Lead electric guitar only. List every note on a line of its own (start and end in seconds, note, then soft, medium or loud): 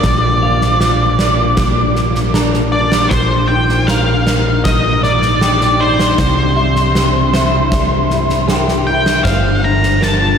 0.00 2.71 D5 medium
2.72 3.12 D5 medium
3.09 3.50 C5 medium
3.48 3.88 G5 medium
3.87 4.64 F5 medium
4.64 5.03 D#5 medium
5.03 5.83 D5 medium
5.80 8.97 C5 medium
8.87 9.24 G5 medium
9.24 9.64 F5 medium
9.64 10.04 A#5 medium
10.03 10.38 A5 medium